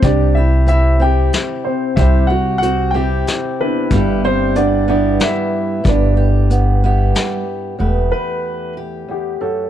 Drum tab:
HH |x-x-x-|x-x-x-|x-x-x-|x-x-x-|
SD |----o-|----o-|----o-|----o-|
BD |o-----|o-----|o-----|o-----|

HH |------|
SD |------|
BD |------|